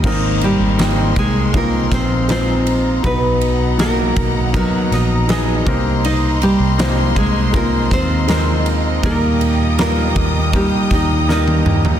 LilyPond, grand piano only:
<<
  \new Staff \with { instrumentName = "Grand piano" } { \time 4/4 \key aes \major \tempo 4 = 80 <bes c' ees' bes'>4 <bes c' ees' g''>4 <aes c' ees' f'>4 <aes c' ees' f'>4 | <fis b dis' b'>4 <fis ais dis' ais'>4 <fis b dis' ais'>4 <fis b dis' aes'>8 <bes c' ees' bes'>8~ | <bes c' ees' bes'>4 <bes c' ees' c''>4 <aes c' ees' f'>4 <aes c' ees' bes'>4 | <g bes ees' bes'>4 <g bes ees' f'>4 <g bes ees' bes'>4 <g bes ees' bes'>4 | }
  \new Staff \with { instrumentName = "Grand piano" } { \clef bass \time 4/4 \key aes \major <aes, ees>4. r2 r8 | b,4. r2 c8~ | c4 r2. | bes,4. r2 r8 | }
>>